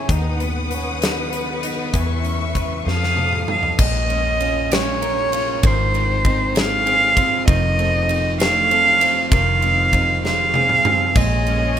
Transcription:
Already playing: clean electric guitar B3 E4 G#4, cello C#4
0.08 fingered electric bass D#2, clean electric guitar D#3, string section B4 F#5 D#6, kick, closed hi-hat
0.12 cello D#4
0.40 clean electric guitar B3, cello B3, closed hi-hat
0.70 cello C#4, clean electric guitar B4, closed hi-hat
1.01 cello B3, clean electric guitar D#4, snare, closed hi-hat
1.32 clean electric guitar B4, closed hi-hat
1.63 clean electric guitar D#4, closed hi-hat
1.93 fingered electric bass E2, clean electric guitar E3, string section E5 C#6, kick, closed hi-hat
2.24 clean electric guitar C#4, closed hi-hat
2.55 clean electric guitar B4, kick, closed hi-hat
2.86 fingered electric bass F2, clean electric guitar F3, string section A4 F5 D#6, cello F5, snare
3.04 snare
3.17 clean electric guitar A4, high tom
3.33 mid tom
3.48 clean electric guitar D#4, cello F5, mid tom
3.63 floor tom
3.78 fingered electric bass A#1, clean electric guitar A#2, steel-string acoustic guitar G#3, kick, crash
3.82 cello D#5
4.09 steel-string acoustic guitar G#3, clean electric guitar C#4, ride
4.40 steel-string acoustic guitar C#4, clean electric guitar F4, ride
4.71 steel-string acoustic guitar G#3, clean electric guitar G#3, cello C#5, snare, ride
5.02 steel-string acoustic guitar C#4, clean electric guitar A#4, ride
5.32 clean electric guitar C#4, steel-string acoustic guitar F4, ride
5.63 fingered electric bass G#1, clean electric guitar G#2, steel-string acoustic guitar D#3, cello C5, kick, ride
5.94 steel-string acoustic guitar G#3, clean electric guitar C4, ride
6.25 steel-string acoustic guitar C4, clean electric guitar D#4, kick, ride
6.55 steel-string acoustic guitar G#3, clean electric guitar G#3, cello F5, snare, ride
6.86 steel-string acoustic guitar C4, clean electric guitar G#4, ride
7.17 clean electric guitar C4, steel-string acoustic guitar F4, kick, ride
7.47 fingered electric bass F1, steel-string acoustic guitar D#3, clean electric guitar F3, cello D#5, kick, ride
7.79 steel-string acoustic guitar A3, clean electric guitar C4, ride
8.09 steel-string acoustic guitar C4, clean electric guitar D#4, ride
8.39 clean electric guitar A3, steel-string acoustic guitar A3, cello F5, snare, ride
8.71 steel-string acoustic guitar C4, clean electric guitar A4, ride
9.01 clean electric guitar C4, steel-string acoustic guitar F4, ride
9.32 fingered electric bass F1, steel-string acoustic guitar D#3, clean electric guitar F3, cello F5, kick, ride
9.62 steel-string acoustic guitar G#3, clean electric guitar C4, ride
9.93 steel-string acoustic guitar C4, clean electric guitar D#4, kick, ride
10.24 clean electric guitar G#3, steel-string acoustic guitar G#3, cello F5, snare
10.54 steel-string acoustic guitar C4, clean electric guitar G#4, high tom
10.69 mid tom
10.85 clean electric guitar C4, steel-string acoustic guitar F4, mid tom
11.15 fingered electric bass A#1, clean electric guitar A#2, steel-string acoustic guitar G#3, string section A#3 G#4 C#5, cello D#5, kick, splash
11.47 steel-string acoustic guitar G#3, clean electric guitar C#4, ride

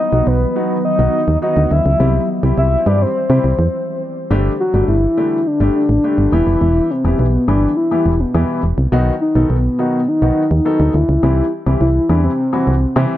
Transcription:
Already playing: ambient pad D#3 F#3 B3
0.00 soft synth lead D#5
0.13 fm bass B1, grand piano F#3 B3 D#4 F#4
0.27 fm bass B1, soft synth lead B4
0.56 grand piano F#3 B3 D#4 F#4
0.85 soft synth lead D#5
0.99 fm bass B1, grand piano F#3 B3 D#4 F#4
1.28 fm bass D#2
1.42 grand piano F#3 B3 D#4 F#4, soft synth lead D#5
1.57 fm bass D2
1.71 fm bass D2, soft synth lead E5
1.86 fm bass C#2
2.00 fm bass C2, ambient pad E3 G3 C4, grand piano G3 C4 E4 G4
2.43 fm bass C2, grand piano G3 C4 E4 G4
2.58 fm bass C2, soft synth lead E5
2.86 fm bass G2, grand piano G3 C4 E4 G4, soft synth lead D5
3.01 soft synth lead C5
3.29 fm bass C3, grand piano G3 C4 E4 G4
3.44 fm bass C2
3.59 fm bass E2
4.31 fm bass G1, grand piano D3 G3 A3 D4 G4
4.60 soft synth lead F#4
4.74 fm bass G1, grand piano D3 G3 A3 D4 G4
4.88 fm bass G1, soft synth lead E4
5.17 grand piano D3 G3 A3 D4 G4
5.46 soft synth lead D4
5.60 fm bass G1, grand piano D3 G3 A3 D4 G4
5.75 soft synth lead D4
5.89 fm bass A1
6.04 grand piano D3 G3 A3 D4 G4
6.18 fm bass G1
6.32 fm bass E1, grand piano E3 G3 B3 E4 G4, soft synth lead E4
6.47 fm bass F1
6.61 fm bass E1, soft synth lead E4
6.90 soft synth lead C4
7.05 fm bass E1, grand piano E3 G3 B3 E4 G4
7.19 fm bass B1, soft synth lead B3
7.48 fm bass G1, grand piano E3 G3 B3 E4 G4, soft synth lead D4
7.77 soft synth lead E4
7.91 grand piano E3 G3 B3 E4 G4
8.06 fm bass E1
8.20 soft synth lead B3
8.34 fm bass E2, grand piano E3 G3 B3 E4 G4
8.63 fm bass E1
8.78 fm bass C2
8.92 fm bass B1, grand piano D#3 F#3 B3 D#4 F#4
9.21 soft synth lead D#4
9.35 fm bass B1, grand piano D#3 F#3 B3 D#4 A4
9.50 fm bass B1, soft synth lead B3
9.79 grand piano D#3 F#3 B3 D#4 F#4
10.08 soft synth lead D#4
10.22 fm bass B1, grand piano D#3 F#3 B3 D#4 F#4
10.51 fm bass D#2
10.65 grand piano D#3 F#3 B3 D#4 A4, soft synth lead D#4
10.80 fm bass D2
10.94 fm bass D2, soft synth lead E4
11.09 fm bass C#2
11.23 fm bass C2, grand piano E3 G3 C4 E4 G4
11.66 fm bass C2, grand piano E3 G3 C4 E4 G4
11.81 fm bass C2, soft synth lead E4
12.09 fm bass E2, grand piano E3 G3 C4 E4 G4, soft synth lead D4
12.24 soft synth lead C4
12.53 grand piano E3 G3 C4 E4 F#4
12.67 fm bass C2
12.96 fm bass C3, grand piano E3 G3 C4 E4 G4 E5

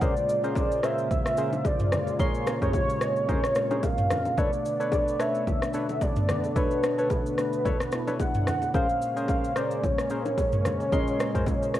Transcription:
0.01 tine electric piano A#2 C#3 G#3 C5, analog synth pad C#3 G#3 A#3 F4, synth stab C#4 G#4 A#4 C5, soft synth lead D5, kick, low conga, shaker
0.16 shaker
0.29 shaker
0.43 synth stab C#4 G#4 A#4 C5, shaker
0.55 soft synth lead D5, kick, high bongo, shaker
0.72 shaker
0.83 tine electric piano A#2 G#3 C#4 C5, synth stab C#4 G#4 A#4 C5, soft synth lead E5, cross-stick, shaker
0.98 shaker
1.11 soft synth lead E5, kick, low conga, shaker
1.26 cross-stick, shaker
1.37 tine electric piano A#2 C#3 G#3 C5, synth stab C#4 G#4 A#4 C5, shaker
1.53 low bongo, shaker
1.65 soft synth lead D5, kick, high bongo, shaker
1.79 mid tom, shaker
1.92 cross-stick, low bongo, low conga, shaker
2.07 high bongo, shaker
2.19 tine electric piano A#2 G#3 C#4 C#5, synth stab C#4 G#4 A#4 C6, soft synth lead C#5, kick, low conga, shaker
2.34 shaker
2.47 cross-stick, high bongo, low bongo, shaker
2.62 tine electric piano A#2 G#3 C#4 G4, synth stab C#4 G#4 A#4 C5, soft synth lead C#5, kick, mid tom, shaker
2.73 kick, high bongo, shaker
2.90 shaker
3.01 tine electric piano A#2 G#3 C4 D#5, cross-stick, shaker
3.09 tine electric piano C#4
3.16 shaker
3.28 synth stab C#4 G#4 A#4 C5, kick, low conga, shaker
3.44 cross-stick, shaker
3.55 tine electric piano A#2 G#3 C4 A#4, cross-stick, shaker
3.63 tine electric piano C#4
3.71 synth stab C#4 G#4 A#4 C5, low bongo, shaker
3.83 soft synth lead F5, kick, high bongo, shaker
3.98 mid tom, shaker
4.10 cross-stick, low bongo, low conga, shaker
4.25 high bongo, low bongo, shaker
4.38 tine electric piano B2 A3 D4 D5, analog synth pad D3 A3 B3 D4, synth stab D4 A4 B4 C#5, soft synth lead D5, kick, low conga, shaker
4.53 shaker
4.65 shaker
4.80 synth stab D4 A4 B4 C#5, shaker
4.92 soft synth lead D5, kick, high bongo, shaker
5.08 shaker
5.19 tine electric piano B2 A3 C#4 C#5, synth stab D4 A4 B4 C#5, soft synth lead E5, cross-stick, shaker
5.27 tine electric piano D4
5.35 shaker
5.47 soft synth lead E5, kick, low conga, shaker
5.62 cross-stick, shaker
5.74 tine electric piano B2 A3 D4 A4, synth stab D4 A4 B4 C#5, shaker
5.89 low bongo, shaker
6.01 soft synth lead D5, kick, high bongo, shaker
6.16 mid tom, shaker
6.29 cross-stick, low bongo, low conga, shaker
6.44 high bongo, shaker
6.56 tine electric piano B2 A3 D4 C#5, synth stab D4 A4 B4 C#5, soft synth lead B4, kick, low conga, shaker
6.71 shaker
6.83 cross-stick, shaker
6.98 tine electric piano B2 A3 D4 A4, synth stab D4 A4 B4 C#5, soft synth lead B4, shaker
7.10 kick, high bongo, shaker
7.26 shaker
7.38 tine electric piano B2 A3 D4 B4, cross-stick, shaker
7.53 shaker
7.65 synth stab D4 A4 B4 C#5, kick, low conga, shaker
7.80 cross-stick, shaker
7.92 tine electric piano B2 A3 D4 E4, cross-stick, shaker
8.07 synth stab D4 A4 B4 C#5, low bongo, shaker
8.19 soft synth lead F#5, kick, high bongo, shaker
8.34 mid tom, shaker
8.47 cross-stick, low bongo, low conga, shaker
8.62 high bongo, shaker
8.74 tine electric piano A#2 G#3 C#4 C5, analog synth pad C#3 G#3 A#3 C#4, synth stab C#4 G#4 A#4 C5, soft synth lead F5, kick, low conga, shaker
8.89 shaker
9.02 shaker
9.16 synth stab C#4 G#4 A#4 C5, shaker
9.28 soft synth lead F5, kick, high bongo, shaker
9.44 shaker
9.56 tine electric piano A#2 G#3 C#4 C5, synth stab C#4 G#4 A#4 C5, soft synth lead D5, cross-stick, shaker
9.71 shaker
9.84 soft synth lead C#5, kick, low conga, shaker
9.98 cross-stick, shaker
10.10 tine electric piano A#2 G#3 C#4 A#4, synth stab C#4 G#4 A#4 C5, shaker
10.25 low bongo, shaker
10.38 kick, high bongo, shaker
10.52 mid tom, shaker
10.65 cross-stick, low bongo, low conga, shaker
10.80 high bongo, shaker
10.92 tine electric piano A#2 G#3 C#4 D#5, synth stab C#4 G#4 A#4 C6, kick, low conga, shaker
11.07 shaker
11.19 cross-stick, high bongo, shaker
11.34 tine electric piano A#2 G#3 C#4 C#5, synth stab C#4 G#4 A#4 C5, kick, mid tom, shaker
11.46 kick, high bongo, shaker
11.62 shaker
11.74 tine electric piano A#2 G#3 C#4 C#5, cross-stick, shaker

